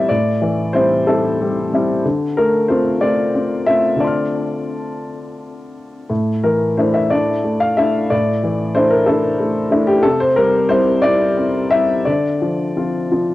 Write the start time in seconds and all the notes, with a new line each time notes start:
Already playing: A2 E3 G3 C4 E4 A#4 C5 D5 E5
0.09 A2 D5
0.42 E3
0.73 G3 C4 E4 C5
1.07 G3 C4 E4 A4
1.41 G3
1.73 G3 C4 E4
2.05 D3
2.37 A3 A#4
2.68 A3 C4 F4 C5
3.01 A3 C4 F4 D5
3.35 C4
3.66 A3 C4 F4 E5
3.96 D3 A3 C4
4.00 F4 D5 A5
4.04 C6 F6
6.10 A2
6.43 E3 A#4
6.77 A3 D4 E4 C5
6.94 E5
7.10 A3 D4 E4 D5
7.44 A3
7.60 F5
7.77 A3 D4 E4 E5
8.10 A2 D5
8.44 E3
8.75 A3 D4 E4 C5
8.90 A#4
9.06 A3 D4 E4 A4
9.40 A3
9.71 A3 D4 E4
9.87 G4
10.03 C3 A4
10.20 C5
10.36 G3 A#4
10.69 G3 C4 E4 C5
11.02 G3 C4 E4 D5
11.37 C4
11.71 G3 C4 E4 E5
12.05 D3 D5
12.41 F3
12.76 F3 C4 F4
13.12 F3 C4 F4